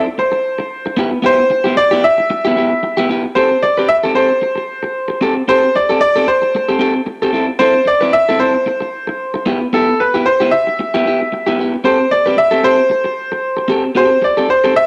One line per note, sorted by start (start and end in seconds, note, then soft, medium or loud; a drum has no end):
0.06 muted clean electric guitar stroke soft
0.18 0.94 C5 medium
0.18 muted clean electric guitar stroke soft
0.32 muted clean electric guitar stroke medium
0.58 muted clean electric guitar stroke soft
0.86 muted clean electric guitar stroke soft
0.97 1.17 B3 medium
0.97 1.11 E4 medium
0.97 1.10 G4 medium
1.11 muted clean electric guitar stroke medium
1.22 1.43 B3 medium
1.22 1.39 E4 medium
1.22 1.37 G4 loud
1.22 1.79 C5 loud
1.38 muted clean electric guitar stroke medium
1.50 muted clean electric guitar stroke soft
1.64 1.75 B3 medium
1.64 1.76 E4 medium
1.64 1.76 G4 medium
1.76 2.04 D5 loud
1.76 muted clean electric guitar stroke soft
1.91 2.03 B3 medium
1.91 2.03 E4 medium
1.91 2.04 G4 medium
2.04 3.05 E5 loud
2.04 muted clean electric guitar stroke soft
2.18 muted clean electric guitar stroke soft
2.30 muted clean electric guitar stroke soft
2.45 2.55 B3 medium
2.45 2.56 E4 medium
2.45 2.57 G4 medium
2.56 2.73 B3 medium
2.56 2.71 E4 medium
2.56 2.70 G4 medium
2.71 muted clean electric guitar stroke soft
2.83 muted clean electric guitar stroke soft
2.97 3.08 B3 medium
2.97 3.09 E4 medium
2.97 3.10 G4 medium
3.09 3.26 B3 medium
3.09 3.24 E4 medium
3.09 3.23 G4 medium
3.24 muted clean electric guitar stroke soft
3.35 3.56 C4 medium
3.35 3.51 G4 medium
3.35 3.49 A4 medium
3.35 3.63 C5 medium
3.51 muted clean electric guitar stroke soft
3.62 3.87 D5 medium
3.62 muted clean electric guitar stroke soft
3.77 3.88 C4 soft
3.77 3.89 G4 medium
3.77 3.90 B4 medium
3.88 3.94 E5 loud
3.88 muted clean electric guitar stroke soft
4.03 4.13 C4 medium
4.03 4.15 G4 medium
4.03 4.16 A4 medium
4.15 4.31 C4 medium
4.15 4.30 G4 medium
4.15 4.29 A4 medium
4.15 5.17 C5 medium
4.30 muted clean electric guitar stroke soft
4.42 muted clean electric guitar stroke soft
4.56 muted clean electric guitar stroke soft
4.83 muted clean electric guitar stroke soft
5.08 muted clean electric guitar stroke soft
5.21 5.42 C4 medium
5.21 5.35 G4 medium
5.21 5.34 A4 loud
5.35 muted clean electric guitar stroke soft
5.48 5.68 C4 medium
5.48 5.64 G4 medium
5.48 5.62 A4 medium
5.48 5.75 C5 loud
5.63 muted clean electric guitar stroke soft
5.75 5.99 D5 medium
5.75 muted clean electric guitar stroke soft
5.89 6.00 C4 soft
5.89 6.01 G4 medium
5.89 6.01 A4 medium
6.01 6.28 D5 loud
6.01 muted clean electric guitar stroke soft
6.16 6.27 C4 medium
6.16 6.27 G4 medium
6.16 6.28 A4 medium
6.28 6.77 C5 medium
6.28 muted clean electric guitar stroke soft
6.42 muted clean electric guitar stroke soft
6.55 muted clean electric guitar stroke soft
6.69 6.78 C4 soft
6.69 6.79 G4 medium
6.69 6.80 A4 soft
6.79 7.00 C4 medium
6.79 6.95 G4 medium
6.79 6.94 A4 loud
6.95 muted clean electric guitar stroke soft
7.06 muted clean electric guitar stroke soft
7.22 7.32 C4 medium
7.22 7.34 G4 medium
7.22 7.33 A4 medium
7.33 7.50 C4 medium
7.33 7.48 E4 medium
7.33 7.46 A4 medium
7.48 muted clean electric guitar stroke soft
7.59 7.80 C4 medium
7.59 7.75 E4 medium
7.59 7.74 A4 medium
7.59 7.87 C5 medium
7.75 muted clean electric guitar stroke soft
7.85 8.14 D5 medium
7.85 muted clean electric guitar stroke soft
8.01 8.12 C4 medium
8.01 8.13 E4 medium
8.01 8.14 B4 medium
8.13 8.40 E5 loud
8.13 muted clean electric guitar stroke soft
8.29 8.38 C4 medium
8.29 8.39 E4 medium
8.29 8.40 A4 medium
8.39 8.56 C4 medium
8.39 8.55 E4 medium
8.39 8.53 A4 medium
8.39 9.42 C5 medium
8.54 muted clean electric guitar stroke soft
8.66 muted clean electric guitar stroke soft
8.80 muted clean electric guitar stroke soft
9.07 muted clean electric guitar stroke soft
9.34 muted clean electric guitar stroke soft
9.46 9.66 B3 medium
9.46 9.61 E4 medium
9.46 9.59 G4 medium
9.61 muted clean electric guitar stroke soft
9.73 9.93 B3 medium
9.73 9.88 E4 medium
9.73 9.87 G4 medium
9.73 10.00 A4 medium
9.88 muted clean electric guitar stroke medium
10.00 10.27 B4 medium
10.00 muted clean electric guitar stroke soft
10.14 10.25 B3 soft
10.14 10.26 E4 medium
10.14 10.26 G4 medium
10.26 10.53 C5 medium
10.26 muted clean electric guitar stroke soft
10.40 10.51 B3 medium
10.40 10.52 E4 medium
10.40 10.52 G4 medium
10.51 11.54 E5 medium
10.51 muted clean electric guitar stroke soft
10.67 muted clean electric guitar stroke soft
10.79 muted clean electric guitar stroke soft
10.94 11.04 B3 medium
10.94 11.06 E4 medium
10.94 11.06 G4 medium
11.06 11.22 B3 medium
11.06 11.21 E4 medium
11.06 11.20 G4 medium
11.22 muted clean electric guitar stroke soft
11.32 muted clean electric guitar stroke soft
11.47 11.58 B3 medium
11.47 11.59 E4 medium
11.47 11.60 G4 medium
11.59 11.75 B3 medium
11.59 11.75 E4 medium
11.59 11.73 G4 medium
11.74 muted clean electric guitar stroke medium
11.84 12.05 C4 medium
11.84 12.00 G4 medium
11.84 11.98 A4 medium
11.84 12.12 C5 medium
12.00 muted clean electric guitar stroke soft
12.11 12.39 D5 medium
12.11 muted clean electric guitar stroke soft
12.26 12.36 C4 soft
12.26 12.37 G4 medium
12.26 12.38 B4 medium
12.37 12.65 E5 loud
12.37 muted clean electric guitar stroke soft
12.51 12.62 C4 medium
12.51 12.63 G4 medium
12.51 12.64 A4 medium
12.64 12.81 C4 medium
12.64 12.78 G4 medium
12.64 12.77 A4 medium
12.64 13.67 C5 loud
12.78 muted clean electric guitar stroke soft
12.90 muted clean electric guitar stroke soft
13.04 muted clean electric guitar stroke soft
13.32 muted clean electric guitar stroke soft
13.57 muted clean electric guitar stroke soft
13.68 13.90 C4 medium
13.68 13.84 G4 medium
13.68 13.83 A4 medium
13.84 muted clean electric guitar stroke soft
13.95 14.17 C4 medium
13.95 14.10 G4 medium
13.95 14.10 A4 medium
13.95 14.24 C5 medium
14.11 muted clean electric guitar stroke soft
14.22 14.51 D5 medium
14.22 muted clean electric guitar stroke soft
14.37 14.48 C4 medium
14.37 14.48 G4 medium
14.37 14.49 A4 medium
14.49 14.78 C5 medium
14.49 muted clean electric guitar stroke soft
14.64 14.74 C4 medium
14.64 14.75 G4 medium
14.64 14.75 A4 medium
14.75 14.87 E5 loud
14.75 muted clean electric guitar stroke soft